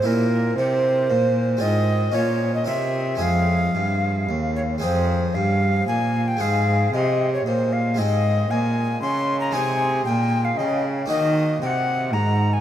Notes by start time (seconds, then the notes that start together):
0.02 A#2 C4 E4 A#4
0.57 C3 C5
1.10 A#2
1.57 G#3 C4 F4 D#5
1.62 G#2
2.12 A#2 C#4 F4 C#5
2.54 D#5
2.65 C3 C4 A#4 E5
3.15 G#3 C4 G#4
3.20 F2 F5
3.75 G2
4.29 D#2
4.56 C#5
4.78 G#3 C4 G#4
4.83 F2 C5
5.34 G2 F5
5.87 A#2 G#5
6.28 G5
6.37 G#2 G#3 C4 G#4 F5
6.41 G#2
6.93 C3 D#5
7.34 C#5
7.45 A#2 C5
7.73 F5
7.94 G#2 G#3 C4 G#4 D#5
7.99 G#2
8.50 A#2 G#5
9.02 C#3 C6
9.40 A#5
9.51 C3 G#3 D#4 G#4 G#5
9.55 C3
10.05 A#2 G5
10.45 F5
10.57 C#3 D#5
11.06 A#3 D#4 F#4 D#5
11.10 D#3
11.62 C3 G5
11.67 F#5
12.13 G#2 A#5
12.53 G#5